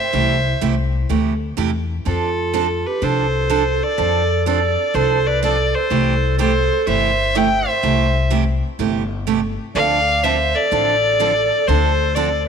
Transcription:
0.00 0.62 C5 medium
0.00 0.62 E5 loud
0.13 0.52 C2 medium
0.13 0.36 C3 medium
0.13 0.36 E3 medium
0.13 0.36 A3 medium
0.13 0.36 E4 medium
0.13 0.36 G4 medium
0.61 1.03 C2 medium
0.61 0.73 C3 medium
0.61 0.74 E3 medium
0.61 0.74 A3 medium
0.61 0.74 E4 medium
0.61 0.74 G4 medium
1.09 1.51 D2 medium
1.09 1.32 C3 medium
1.09 1.32 E3 medium
1.09 1.32 A3 medium
1.09 1.33 E4 medium
1.09 1.33 G4 medium
1.57 1.99 E2 medium
1.57 1.69 C3 medium
1.57 1.69 E3 medium
1.57 1.70 A3 medium
1.57 1.70 E4 medium
1.57 1.70 G4 medium
2.05 2.83 F2 medium
2.05 2.28 F3 medium
2.05 2.28 C4 medium
2.05 2.28 D4 medium
2.05 2.88 F4 medium
2.05 2.29 A4 medium
2.05 2.88 A4 medium
2.53 2.66 F3 medium
2.53 2.66 C4 medium
2.53 2.66 D4 medium
2.53 2.66 A4 medium
2.86 3.05 G4 medium
2.86 3.05 B4 medium
3.02 3.79 C2 medium
3.02 3.24 F3 medium
3.02 3.25 C4 medium
3.02 3.25 D4 medium
3.02 3.25 A4 medium
3.02 3.84 A4 medium
3.02 3.85 C5 medium
3.50 3.62 F3 medium
3.50 3.62 C4 medium
3.50 3.62 D4 medium
3.50 3.62 A4 medium
3.83 4.47 A4 medium
3.83 4.47 D5 loud
3.98 4.75 F2 medium
3.98 4.21 F3 medium
3.98 4.21 C4 medium
3.98 4.21 D4 medium
3.98 4.21 A4 medium
4.46 4.58 F3 medium
4.46 4.58 C4 medium
4.46 4.59 D4 medium
4.46 4.59 A4 medium
4.46 4.96 A4 medium
4.46 4.96 D5 medium
4.94 5.71 C2 medium
4.94 5.17 F3 medium
4.94 5.17 C4 medium
4.94 5.17 D4 medium
4.94 5.17 A4 medium
4.94 5.29 A4 medium
4.94 5.28 C5 medium
5.26 5.43 B4 medium
5.26 5.43 D5 medium
5.42 5.55 F3 medium
5.42 5.55 C4 medium
5.42 5.55 D4 medium
5.42 5.55 A4 medium
5.42 5.76 A4 medium
5.42 5.76 D5 medium
5.75 6.40 A4 medium
5.75 6.39 C5 loud
5.90 6.68 C2 medium
5.90 6.13 C3 medium
5.90 6.13 E3 medium
5.90 6.14 A3 medium
5.90 6.14 E4 medium
5.90 6.14 G4 medium
6.38 6.51 C3 medium
6.38 6.51 E3 medium
6.38 6.51 A3 medium
6.38 6.51 E4 medium
6.38 6.51 G4 medium
6.38 6.85 A4 medium
6.38 6.84 C5 medium
6.87 7.64 G1 medium
6.87 7.09 C3 medium
6.87 7.10 E3 medium
6.87 7.10 A3 medium
6.87 7.10 E4 medium
6.87 7.10 G4 medium
6.87 7.37 C5 medium
6.87 7.39 E5 loud
7.35 7.47 C3 medium
7.35 7.47 E3 medium
7.35 7.47 A3 medium
7.35 7.47 E4 medium
7.35 7.47 G4 medium
7.35 7.69 E5 medium
7.35 7.70 G5 loud
7.68 8.32 C5 medium
7.68 8.32 E5 loud
7.83 8.60 C2 medium
7.83 8.06 C3 medium
7.83 8.06 E3 medium
7.83 8.06 A3 medium
7.83 8.06 E4 medium
7.83 8.06 G4 medium
8.30 8.43 C3 medium
8.30 8.43 E3 medium
8.30 8.43 A3 medium
8.30 8.43 E4 medium
8.30 8.43 G4 medium
8.79 9.56 G1 medium
8.79 9.02 C3 medium
8.79 9.02 E3 medium
8.79 9.02 A3 medium
8.79 9.02 E4 medium
8.79 9.02 G4 medium
9.27 9.39 C3 medium
9.27 9.39 E3 medium
9.27 9.39 A3 medium
9.27 9.39 E4 medium
9.27 9.40 G4 medium
9.75 10.52 D2 medium
9.75 9.98 D3 medium
9.75 9.98 F3 medium
9.75 9.98 C4 medium
9.75 9.98 D4 medium
9.75 9.98 A4 medium
9.75 10.25 D5 medium
9.75 10.26 F5 loud
10.23 10.36 D3 medium
10.23 10.36 F3 medium
10.23 10.36 C4 medium
10.23 10.36 D4 medium
10.23 10.36 A4 medium
10.23 10.57 C5 medium
10.23 10.57 E5 loud
10.55 11.67 A4 medium
10.55 11.69 D5 loud
10.71 11.49 A1 medium
10.71 10.94 D3 medium
10.71 10.94 F3 medium
10.71 10.94 C4 medium
10.71 10.95 D4 medium
10.71 10.95 A4 medium
11.20 11.32 D3 medium
11.20 11.32 F3 medium
11.20 11.32 C4 medium
11.20 11.32 D4 medium
11.20 11.32 A4 medium
11.67 12.45 D2 medium
11.67 11.90 D3 medium
11.67 11.91 F3 medium
11.67 11.91 C4 medium
11.67 11.91 D4 medium
11.67 12.15 A4 medium
11.67 11.91 A4 medium
11.67 12.17 C5 loud
12.15 12.28 D3 medium
12.15 12.28 F3 medium
12.15 12.28 C4 medium
12.15 12.28 D4 medium
12.15 12.46 A4 medium
12.15 12.28 A4 medium
12.15 12.46 D5 medium

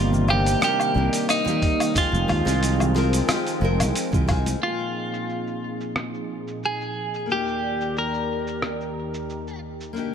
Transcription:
0.00 0.54 G1 medium
0.00 1.93 C3 medium
0.00 4.59 D#3 medium
0.00 1.93 G3 medium
0.00 0.25 A#3 medium
0.00 1.92 A#3 medium
0.00 0.25 C4 medium
0.00 0.25 D4 medium
0.00 0.26 D#4 medium
0.00 0.30 F4 loud
0.00 0.26 G4 medium
0.13 low conga medium
0.13 cabasa soft
0.28 0.58 A#3 medium
0.28 0.58 C4 medium
0.28 0.59 D4 medium
0.28 0.59 D#4 medium
0.28 0.61 G4 medium
0.28 0.59 C5 loud
0.28 high conga medium
0.28 low woodblock medium
0.46 open hi-hat soft
0.46 cabasa medium
0.61 0.91 A#3 medium
0.61 0.92 C4 medium
0.61 0.92 D4 medium
0.61 0.92 D#4 medium
0.61 0.93 F4 medium
0.61 1.26 G4 medium
0.61 cross-stick medium
0.61 open hi-hat medium
0.61 cabasa medium
0.80 cabasa soft
0.80 low woodblock medium
0.94 1.08 C2 medium
0.94 1.42 A#3 medium
0.94 1.42 C4 medium
0.94 1.43 D4 medium
0.94 1.43 D#4 medium
0.94 1.43 A#4 medium
1.13 open hi-hat medium
1.13 cabasa medium
1.29 1.98 D#4 medium
1.29 open hi-hat medium
1.29 cabasa medium
1.29 low woodblock medium
1.45 1.91 A#3 medium
1.45 1.91 C4 medium
1.45 1.92 D#4 medium
1.45 1.93 G4 loud
1.45 1.92 D5 medium
1.45 low conga medium
1.45 cabasa soft
1.62 kick loud
1.62 open hi-hat soft
1.80 open hi-hat soft
1.80 cabasa medium
1.80 low woodblock medium
1.94 4.60 F3 medium
1.94 2.42 G#3 medium
1.94 4.60 G#3 medium
1.94 2.42 C4 medium
1.94 4.60 C4 medium
1.94 2.42 D#4 medium
1.94 2.43 F4 medium
1.94 3.93 F4 medium
1.94 2.43 G4 medium
1.94 kick loud
1.94 open hi-hat medium
1.94 cabasa medium
2.12 2.24 F1 loud
2.12 high conga medium
2.12 cabasa soft
2.28 2.41 D#2 loud
2.28 kick medium
2.28 open hi-hat soft
2.28 high conga medium
2.28 low woodblock medium
2.45 3.21 C2 medium
2.45 2.91 G#3 medium
2.45 2.92 C4 medium
2.45 2.92 D#4 medium
2.45 2.92 F4 medium
2.45 2.93 G4 medium
2.45 open hi-hat soft
2.45 cabasa medium
2.63 open hi-hat medium
2.63 cabasa soft
2.80 low conga medium
2.80 cabasa soft
2.80 low woodblock medium
2.95 3.25 G#3 medium
2.95 3.25 C4 medium
2.95 3.26 D#4 medium
2.95 3.26 F4 medium
2.95 3.26 A#4 loud
2.95 open hi-hat soft
3.13 open hi-hat soft
3.13 cabasa medium
3.28 3.58 G#3 medium
3.28 3.59 C4 medium
3.28 3.59 D#4 medium
3.28 3.60 F4 medium
3.28 3.60 G4 medium
3.28 cross-stick medium
3.28 open hi-hat medium
3.28 cabasa medium
3.28 low woodblock medium
3.47 open hi-hat soft
3.47 cabasa soft
3.61 3.81 F1 loud
3.61 4.09 G#3 medium
3.61 4.09 C4 medium
3.61 4.09 D#4 medium
3.61 4.10 F4 medium
3.61 4.10 A#4 loud
3.80 3.91 C2 medium
3.80 open hi-hat medium
3.80 cabasa medium
3.80 low woodblock medium
3.95 open hi-hat medium
3.95 cabasa medium
4.12 4.54 C2 medium
4.12 4.25 G#3 medium
4.12 4.25 C4 medium
4.12 4.25 D#4 medium
4.12 4.26 F4 medium
4.12 4.26 G4 medium
4.12 kick medium
4.12 low conga medium
4.12 cabasa soft
4.28 4.58 G#3 medium
4.28 4.58 C4 medium
4.28 4.59 D#4 medium
4.28 4.59 F4 medium
4.28 4.60 G#4 loud
4.28 kick loud
4.28 open hi-hat soft
4.28 low woodblock medium
4.46 open hi-hat soft
4.46 high conga medium
4.46 cabasa medium
4.59 7.26 A#2 medium
4.59 7.26 F3 medium
4.59 7.24 A#3 medium
4.59 7.25 C4 medium
4.59 7.27 D#4 medium
4.59 7.26 D#4 medium
4.59 6.65 F4 medium
4.59 7.26 G#4 medium
4.59 cabasa soft
4.64 7.26 F4 medium
4.64 7.27 G#4 medium
4.80 cabasa soft
5.14 cabasa medium
5.29 cabasa soft
5.47 cabasa soft
5.81 cabasa medium
5.96 cross-stick medium
5.96 cabasa soft
6.14 cabasa soft
6.48 cabasa medium
6.63 7.31 G#4 medium
6.63 cabasa soft
6.81 cabasa soft
7.14 cabasa medium
7.26 9.93 D#2 medium
7.26 9.93 D#3 medium
7.26 9.90 A#3 medium
7.26 9.92 D#4 medium
7.26 9.93 G4 medium
7.26 9.93 D5 medium
7.26 cabasa soft
7.31 9.93 F4 medium
7.31 7.98 G4 medium
7.31 9.94 G4 medium
7.48 cabasa soft
7.81 cabasa medium
7.97 9.60 A#4 medium
7.97 cabasa soft
8.14 cabasa soft
8.47 cabasa medium
8.62 cross-stick medium
8.62 cabasa soft
8.81 cabasa soft
9.14 cabasa medium
9.30 cabasa medium
9.47 cabasa soft
9.81 cabasa medium
9.93 10.14 C2 medium
9.93 10.14 C3 medium
9.93 10.14 D#3 medium
9.93 10.14 A#3 medium
9.93 10.14 D4 medium
9.93 cabasa medium
9.98 10.14 D#4 medium
9.98 10.14 G4 medium

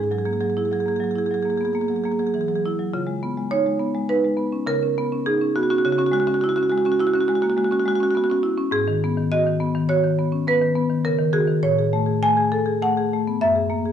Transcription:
0.00 2.88 G#2 soft
0.00 0.12 G#4 soft
0.11 0.36 F#3 soft
0.11 0.18 G#4 soft
0.18 0.26 G#4 soft
0.26 0.51 A#3 soft
0.26 0.33 G#4 soft
0.33 0.41 G#4 soft
0.41 0.66 F#3 soft
0.41 0.50 G#4 soft
0.50 0.58 G#4 soft
0.57 0.81 E4 soft
0.57 0.65 G#4 soft
0.65 0.73 G#4 soft
0.71 0.96 F#3 soft
0.71 0.80 G#4 soft
0.80 0.88 G#4 soft
0.86 1.11 A#3 soft
0.86 0.96 G#4 soft
0.96 1.04 G#4 soft
1.00 1.25 F#3 soft
1.00 1.11 G#4 soft
1.11 1.18 G#4 soft
1.15 1.40 E4 soft
1.15 1.26 G#4 soft
1.26 1.34 G#4 soft
1.31 1.55 F#3 soft
1.31 1.43 G#4 soft
1.43 1.70 A#3 soft
1.43 1.50 G#4 soft
1.50 1.58 G#4 soft
1.58 1.76 B3 soft
1.58 1.65 G#4 soft
1.65 1.73 G#4 soft
1.73 1.99 A#3 soft
1.73 1.81 G#4 soft
1.81 1.88 G#4 soft
1.88 2.14 F#3 soft
1.88 1.96 G#4 soft
1.96 2.04 G#4 soft
2.04 2.29 A#3 soft
2.04 2.12 G#4 soft
2.12 2.19 G#4 soft
2.19 2.43 F#3 soft
2.19 2.27 G#4 soft
2.27 2.34 G#4 soft
2.34 2.49 E3 soft
2.34 2.41 G#4 soft
2.41 2.48 G#4 soft
2.48 2.72 F#3 soft
2.48 2.55 G#4 soft
2.55 2.59 G#4 soft
2.66 2.88 E4 soft
2.79 2.94 F#3 soft
2.94 4.63 C#3 soft
2.94 3.49 F4 medium
3.07 3.31 G#3 soft
3.23 3.46 B3 soft
3.38 3.60 G#3 soft
3.51 3.74 D#4 soft
3.51 4.07 C#5 medium
3.66 3.89 G#3 soft
3.80 4.03 B3 soft
3.95 4.18 G#3 soft
4.09 4.32 D#4 soft
4.09 4.65 B4 medium
4.24 4.47 G#3 soft
4.37 4.61 B3 soft
4.52 4.67 C#4 soft
4.67 5.79 C#3 medium
4.67 5.23 A#4 medium
4.83 5.05 C#4 soft
4.98 5.20 B3 soft
5.12 5.34 C#4 soft
5.26 5.49 D#4 soft
5.26 5.53 G#4 medium
5.41 5.64 C#4 soft
5.56 5.78 B3 soft
5.56 5.63 F#4 medium
5.63 5.70 F#4 medium
5.70 5.84 C#4 soft
5.70 5.78 F#4 medium
5.78 5.85 F#4 medium
5.85 8.70 C#3 medium
5.85 5.92 F#4 medium
5.92 5.99 F#4 medium
5.98 6.21 C#4 soft
5.98 6.07 F#4 medium
6.07 6.13 F#4 medium
6.12 6.35 G#3 soft
6.12 6.20 F#4 medium
6.20 6.27 F#4 medium
6.27 6.50 C#4 soft
6.27 6.34 F#4 medium
6.34 6.41 F#4 medium
6.41 6.66 E4 soft
6.41 6.49 F#4 medium
6.49 6.56 F#4 medium
6.56 6.80 C#4 soft
6.56 6.63 F#4 medium
6.63 6.70 F#4 medium
6.70 6.94 G#3 soft
6.70 6.78 F#4 medium
6.78 6.85 F#4 medium
6.85 7.09 C#4 soft
6.85 6.92 F#4 medium
6.92 6.99 F#4 medium
6.99 7.23 E4 medium
6.99 7.07 F#4 medium
7.07 7.14 F#4 medium
7.14 7.38 C#4 soft
7.14 7.20 F#4 medium
7.20 7.28 F#4 medium
7.28 7.52 G#3 soft
7.28 7.35 F#4 medium
7.35 7.42 F#4 medium
7.42 7.57 A#3 soft
7.42 7.50 F#4 medium
7.50 7.58 F#4 medium
7.57 7.80 G#3 soft
7.57 7.65 F#4 medium
7.65 7.72 F#4 medium
7.71 7.94 C#4 soft
7.71 7.80 F#4 medium
7.80 7.88 F#4 medium
7.85 8.09 G#3 medium
7.85 7.96 F#4 medium
7.96 8.03 F#4 medium
8.00 8.23 C#4 soft
8.00 8.11 F#4 medium
8.11 8.17 F#4 medium
8.15 8.29 B3 soft
8.15 8.24 F#4 medium
8.24 8.31 F#4 medium
8.30 8.53 C#4 soft
8.30 8.40 F#4 medium
8.43 8.67 E4 medium
8.58 8.73 C#4 soft
8.71 11.59 G#2 medium
8.71 9.29 G#4 medium
8.88 9.11 D#3 soft
9.04 9.27 B3 medium
9.17 9.41 D#3 soft
9.32 9.55 F#4 medium
9.32 9.88 D#5 medium
9.47 9.70 D#3 soft
9.60 9.84 B3 medium
9.75 9.98 D#3 medium
9.89 10.13 F#4 medium
9.89 10.45 C#5 medium
10.04 10.27 D#3 soft
10.19 10.42 B3 soft
10.32 10.47 C#4 soft
10.47 10.71 B3 medium
10.47 11.04 B4 medium
10.61 10.85 D#3 soft
10.75 10.99 B3 medium
10.90 11.14 D#3 soft
11.05 11.20 C#3 soft
11.05 11.33 A#4 medium
11.18 11.42 D#3 soft
11.33 11.57 F#4 soft
11.33 11.62 G#4 medium
11.48 11.63 D#3 soft
11.63 13.35 A2 medium
11.63 12.20 C#5 medium
11.78 12.02 G#4 soft
11.93 12.17 A3 soft
12.06 12.30 G#4 soft
12.23 12.46 A3 medium
12.23 12.78 G#5 medium
12.37 12.60 G#4 soft
12.52 12.75 A4 medium
12.66 12.89 G#4 soft
12.82 13.05 A3 soft
12.82 13.38 F#5 medium
12.97 13.20 G#4 soft
13.13 13.35 A3 soft
13.27 13.41 B3 soft
13.41 13.92 F#2 medium
13.41 13.92 E5 medium
13.56 13.79 G#4 soft
13.70 13.92 A#3 soft
13.86 13.92 G#4 soft

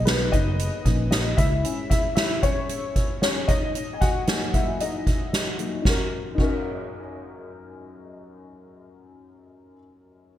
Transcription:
0.00 0.30 B1 medium
0.00 0.83 A#3 soft
0.00 0.84 C#4 soft
0.00 0.34 D#4 medium
0.00 0.32 D#5 medium
0.05 0.32 B3 medium
0.05 0.33 B4 medium
0.05 snare loud
0.05 closed hi-hat medium
0.32 0.70 F#1 medium
0.32 0.84 D#4 medium
0.32 1.09 D#5 medium
0.32 kick medium
0.32 closed hi-hat medium
0.59 closed hi-hat medium
0.85 1.34 A#1 medium
0.85 1.09 A#3 soft
0.85 1.09 C#4 soft
0.85 1.09 D#4 soft
0.85 kick medium
0.85 closed hi-hat medium
1.11 1.37 D#4 medium
1.11 1.38 D#5 medium
1.11 snare medium
1.11 closed hi-hat medium
1.37 1.63 C#2 medium
1.37 1.63 E4 medium
1.37 1.88 E5 medium
1.37 kick medium
1.37 closed hi-hat medium
1.63 1.99 G#3 soft
1.63 1.99 C#4 soft
1.63 1.90 E4 medium
1.63 closed hi-hat medium
1.90 2.16 E4 medium
1.90 2.14 E5 medium
1.90 kick medium
1.90 closed hi-hat medium
2.15 2.23 E4 medium
2.15 2.22 E5 medium
2.15 snare loud
2.15 closed hi-hat medium
2.43 3.19 C#4 medium
2.43 3.18 C#5 medium
2.43 kick medium
2.43 closed hi-hat medium
2.69 closed hi-hat medium
2.96 kick medium
2.96 closed hi-hat medium
3.22 3.47 C#4 medium
3.22 3.49 C#5 medium
3.22 snare medium
3.22 closed hi-hat medium
3.48 3.91 D#4 medium
3.48 3.95 D#5 medium
3.48 kick medium
3.48 closed hi-hat medium
3.75 closed hi-hat medium
3.93 4.01 G#5 medium
4.01 4.51 F#4 medium
4.01 4.55 F#5 medium
4.01 kick medium
4.01 closed hi-hat medium
4.27 5.57 F#3 soft
4.27 5.58 A#3 soft
4.27 4.81 D#4 soft
4.27 snare medium
4.27 closed hi-hat medium
4.54 4.79 E4 medium
4.54 4.81 E5 medium
4.54 kick medium
4.54 closed hi-hat soft
4.80 5.56 D#4 medium
4.80 5.56 D#5 medium
4.80 closed hi-hat medium
5.07 kick medium
5.07 closed hi-hat soft
5.33 snare medium
5.33 closed hi-hat medium
5.58 5.82 F#3 soft
5.58 5.83 A#3 soft
5.58 5.80 D#4 soft
5.58 closed hi-hat medium
5.82 6.00 F#2 medium
5.82 5.98 D#4 medium
5.82 6.00 F#4 medium
5.82 kick medium
5.82 snare medium
5.89 6.02 A#4 medium
6.35 9.75 F#2 medium
6.35 9.72 D#4 medium
6.35 9.75 F#4 medium
6.35 kick medium
6.35 crash medium
6.42 9.79 A#4 medium

